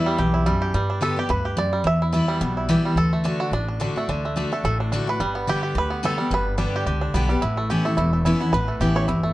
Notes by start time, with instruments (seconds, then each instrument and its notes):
Already playing: steel-string acoustic guitar E2 E3 G3 B3 E4, five-string banjo E4 G4
0.06 five-string banjo G3
0.18 upright bass B1, steel-string acoustic guitar E2, five-string banjo G4
0.34 five-string banjo E4
0.46 steel-string acoustic guitar F#2, five-string banjo G3
0.62 five-string banjo G4
0.74 upright bass G2, steel-string acoustic guitar G2, five-string banjo G3
0.90 five-string banjo D4
1.01 steel-string acoustic guitar D3 G3 B3 G4, five-string banjo A4
1.16 steel-string acoustic guitar B3 G4, five-string banjo G4
1.29 upright bass D2, steel-string acoustic guitar G2, five-string banjo B4
1.45 five-string banjo G4
1.57 steel-string acoustic guitar F#2, five-string banjo D5
1.73 five-string banjo G3
1.84 steel-string acoustic guitar E2, upright bass E2, five-string banjo E5
2.02 five-string banjo E4
2.12 steel-string acoustic guitar E3 G3 B3 E4, five-string banjo E4
2.28 five-string banjo G3
2.41 upright bass B1, steel-string acoustic guitar B2, five-string banjo B3
2.57 five-string banjo E4
2.69 steel-string acoustic guitar E3 G3 B3 E4, five-string banjo G4
2.85 five-string banjo G3
2.95 upright bass D2, steel-string acoustic guitar D3, five-string banjo A4
3.13 five-string banjo A3
3.24 steel-string acoustic guitar D3 A3 D4 F#4, five-string banjo D4
3.40 five-string banjo F#4
3.51 upright bass A1, steel-string acoustic guitar A2, five-string banjo D4
3.68 five-string banjo D4
3.80 steel-string acoustic guitar D3 A3 D4 F#4, five-string banjo D4
3.96 five-string banjo A3, steel-string acoustic guitar D4 F#4
4.08 upright bass D2, steel-string acoustic guitar D3, five-string banjo D4
4.25 five-string banjo A3
4.36 steel-string acoustic guitar D3 A3 D4 F#4, five-string banjo D4
4.52 five-string banjo A3, steel-string acoustic guitar D4 F#4
4.64 upright bass A1, steel-string acoustic guitar A2, five-string banjo A4
4.80 five-string banjo D4
4.92 steel-string acoustic guitar D3 A3 D4 F#4, five-string banjo D4
5.07 steel-string acoustic guitar D4 F#4, five-string banjo B4
5.20 upright bass G1, steel-string acoustic guitar G2, five-string banjo G3
5.35 five-string banjo B3
5.47 steel-string acoustic guitar D3 G3 B3 G4, five-string banjo G4
5.63 five-string banjo G4
5.75 upright bass D2, steel-string acoustic guitar D3, five-string banjo B4
5.90 five-string banjo B3
6.03 steel-string acoustic guitar D3 G3 B3 G4, five-string banjo A4
6.18 five-string banjo G3, steel-string acoustic guitar B3 G4
6.31 upright bass G1, steel-string acoustic guitar G2, five-string banjo B4
6.58 steel-string acoustic guitar D3 G3 B3 G4, five-string banjo D4
6.76 five-string banjo G4
6.86 upright bass C#2, steel-string acoustic guitar D3, five-string banjo G4
7.01 five-string banjo D4
7.14 upright bass B1, steel-string acoustic guitar D3 G3 B3 G4, five-string banjo B3
7.29 five-string banjo G3, steel-string acoustic guitar B3 G4
7.42 upright bass A1, steel-string acoustic guitar A2, five-string banjo E4
7.57 five-string banjo A3
7.70 steel-string acoustic guitar E3 B3 C#4 E4, five-string banjo G4
7.85 five-string banjo A3, steel-string acoustic guitar C#4 E4
7.97 upright bass E1, steel-string acoustic guitar E2, five-string banjo E4
8.13 five-string banjo A3
8.25 steel-string acoustic guitar E3 B3 C#4 E4, five-string banjo E4
8.40 five-string banjo B3, steel-string acoustic guitar C#4 E4
8.52 upright bass A1, steel-string acoustic guitar A2, five-string banjo B4
8.68 five-string banjo A3
8.80 upright bass A1, steel-string acoustic guitar E3 B3 C#4 E4, five-string banjo G4
8.96 five-string banjo C#5
9.08 upright bass G1, steel-string acoustic guitar E2, five-string banjo E4
9.23 five-string banjo A3